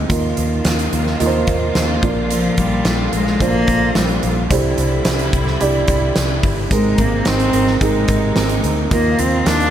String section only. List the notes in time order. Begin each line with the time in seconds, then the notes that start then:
0.10 D#3 F3 A#3 F4
2.03 D3
4.50 G3 C4 E4
6.71 C3 G#3 A#3 D#4
8.91 D#3 F3 F4